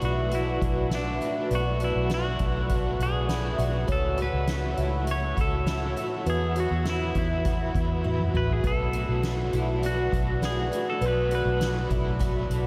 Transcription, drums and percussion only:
0.02 closed hi-hat
0.31 closed hi-hat
0.62 kick, closed hi-hat
0.91 snare, closed hi-hat
1.22 closed hi-hat
1.51 closed hi-hat
1.80 closed hi-hat
2.10 snare, closed hi-hat
2.39 kick, closed hi-hat
2.69 kick, closed hi-hat
3.00 closed hi-hat
3.29 snare, closed hi-hat
3.59 closed hi-hat
3.88 kick, closed hi-hat
4.18 closed hi-hat
4.47 snare, closed hi-hat
4.77 closed hi-hat
5.07 closed hi-hat
5.37 kick, closed hi-hat
5.67 snare, closed hi-hat
5.97 closed hi-hat
6.26 closed hi-hat
6.56 closed hi-hat
6.85 snare, closed hi-hat
7.15 kick, closed hi-hat
7.45 kick, closed hi-hat
7.75 kick, closed hi-hat
8.04 high tom
8.19 mid tom
8.34 mid tom
8.49 floor tom
8.64 kick, closed hi-hat
8.93 closed hi-hat
9.23 snare, closed hi-hat
9.53 closed hi-hat
9.83 closed hi-hat
10.12 kick, closed hi-hat
10.42 snare, closed hi-hat
10.73 closed hi-hat
11.02 closed hi-hat
11.31 closed hi-hat
11.61 snare, closed hi-hat
11.90 kick, closed hi-hat
12.20 kick, closed hi-hat
12.51 closed hi-hat

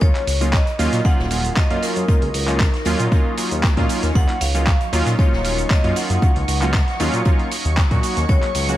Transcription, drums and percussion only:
0.01 kick, closed hi-hat, shaker
0.15 clap, closed hi-hat
0.27 snare, closed hi-hat, open hi-hat, shaker
0.41 closed hi-hat, shaker
0.53 kick, snare, clap, closed hi-hat, shaker
0.67 closed hi-hat
0.79 closed hi-hat, open hi-hat, shaker
0.93 snare, closed hi-hat, shaker
1.05 kick, closed hi-hat, shaker
1.19 snare
1.31 closed hi-hat, open hi-hat, shaker
1.45 closed hi-hat, shaker
1.56 kick, snare, clap, closed hi-hat, shaker
1.70 closed hi-hat
1.83 snare, closed hi-hat, open hi-hat, shaker
1.96 closed hi-hat, shaker
2.08 kick, closed hi-hat, shaker
2.22 closed hi-hat
2.34 closed hi-hat, open hi-hat, shaker
2.48 clap, closed hi-hat, shaker
2.60 kick, snare, clap, closed hi-hat, shaker
2.74 snare, closed hi-hat
2.85 closed hi-hat, open hi-hat, shaker
3.00 closed hi-hat, shaker
3.12 kick, closed hi-hat, shaker
3.38 closed hi-hat, open hi-hat, shaker
3.51 closed hi-hat, shaker
3.63 kick, snare, clap, closed hi-hat, shaker
3.77 kick, snare, closed hi-hat
3.89 closed hi-hat, open hi-hat, shaker
4.03 snare, closed hi-hat, shaker
4.15 kick, closed hi-hat, shaker
4.29 clap, closed hi-hat
4.41 snare, closed hi-hat, open hi-hat, shaker
4.55 closed hi-hat, shaker
4.67 kick, snare, clap, closed hi-hat, shaker
4.81 closed hi-hat
4.93 closed hi-hat, open hi-hat, shaker
5.07 snare, closed hi-hat, shaker
5.19 kick, closed hi-hat, shaker
5.33 snare
5.45 closed hi-hat, open hi-hat, shaker
5.58 closed hi-hat, shaker
5.70 kick, snare, clap, closed hi-hat, shaker
5.84 closed hi-hat
5.96 snare, closed hi-hat, open hi-hat, shaker
6.10 closed hi-hat, shaker
6.22 kick, closed hi-hat, shaker
6.36 closed hi-hat
6.48 closed hi-hat, open hi-hat, shaker
6.62 clap, closed hi-hat, shaker
6.74 kick, snare, clap, closed hi-hat, shaker
6.88 snare, closed hi-hat
7.00 closed hi-hat, open hi-hat, shaker
7.14 closed hi-hat, shaker
7.25 kick, closed hi-hat, shaker
7.39 closed hi-hat
7.51 closed hi-hat, open hi-hat, shaker
7.65 closed hi-hat, shaker
7.77 kick, snare, clap, closed hi-hat, shaker
7.91 kick, closed hi-hat
8.03 closed hi-hat, open hi-hat, shaker
8.17 snare, closed hi-hat, shaker
8.29 kick, closed hi-hat, shaker
8.42 clap, closed hi-hat
8.55 snare, closed hi-hat, open hi-hat, shaker
8.69 closed hi-hat, shaker

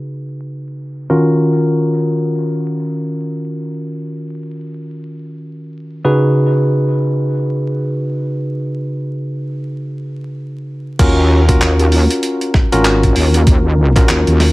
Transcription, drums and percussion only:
10.99 kick, closed hi-hat, crash
11.49 kick, closed hi-hat
11.61 clap, closed hi-hat
11.79 closed hi-hat
11.92 open hi-hat
12.11 closed hi-hat
12.23 closed hi-hat
12.41 closed hi-hat
12.54 kick, snare
12.72 closed hi-hat
12.85 clap, closed hi-hat
13.03 kick, closed hi-hat
13.16 open hi-hat
13.34 closed hi-hat
13.47 kick, closed hi-hat
13.96 kick, clap, closed hi-hat
14.09 clap, closed hi-hat
14.27 closed hi-hat
14.40 snare, open hi-hat

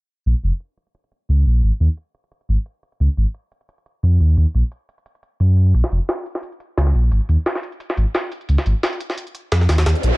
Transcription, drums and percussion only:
0.26 closed hi-hat
0.35 closed hi-hat
0.43 closed hi-hat
0.60 closed hi-hat
0.78 closed hi-hat
0.87 closed hi-hat
0.95 closed hi-hat
1.04 closed hi-hat
1.12 closed hi-hat
1.29 closed hi-hat
1.46 closed hi-hat
1.55 closed hi-hat
1.63 closed hi-hat
1.73 closed hi-hat
1.80 closed hi-hat
1.97 closed hi-hat
2.15 closed hi-hat
2.24 closed hi-hat
2.32 closed hi-hat
2.41 closed hi-hat
2.49 closed hi-hat
2.66 closed hi-hat
2.83 closed hi-hat
2.92 closed hi-hat
3.00 closed hi-hat
3.09 closed hi-hat
3.17 closed hi-hat
3.35 closed hi-hat
3.52 closed hi-hat
3.61 closed hi-hat
3.69 closed hi-hat
3.78 closed hi-hat
3.86 closed hi-hat
4.03 closed hi-hat
4.20 closed hi-hat
4.30 closed hi-hat
4.37 closed hi-hat
4.47 closed hi-hat
4.55 closed hi-hat
4.72 closed hi-hat
4.89 closed hi-hat
4.98 closed hi-hat
5.06 closed hi-hat
5.15 closed hi-hat
5.23 closed hi-hat
5.40 closed hi-hat
5.57 closed hi-hat
5.67 closed hi-hat
5.74 closed hi-hat
5.84 snare, closed hi-hat
5.92 closed hi-hat
6.09 snare, closed hi-hat
6.18 closed hi-hat
6.26 closed hi-hat, open hi-hat
6.35 snare, closed hi-hat
6.43 closed hi-hat
6.52 closed hi-hat
6.60 closed hi-hat
6.77 snare, closed hi-hat
6.87 snare
6.95 closed hi-hat
7.04 closed hi-hat
7.12 closed hi-hat
7.21 closed hi-hat
7.29 closed hi-hat
7.46 snare, closed hi-hat
7.55 snare
7.63 closed hi-hat
7.72 closed hi-hat
7.80 closed hi-hat
7.89 snare, closed hi-hat
7.97 closed hi-hat
8.14 snare, closed hi-hat
8.32 closed hi-hat
8.41 closed hi-hat
8.49 closed hi-hat
8.58 snare, closed hi-hat
8.66 closed hi-hat
8.83 snare, closed hi-hat
8.93 closed hi-hat
9.00 closed hi-hat
9.10 snare, closed hi-hat
9.18 closed hi-hat
9.27 closed hi-hat
9.35 closed hi-hat
9.52 snare, closed hi-hat
9.61 snare
9.69 snare, closed hi-hat
9.78 snare, closed hi-hat
9.86 snare, closed hi-hat
9.95 closed hi-hat
10.03 closed hi-hat

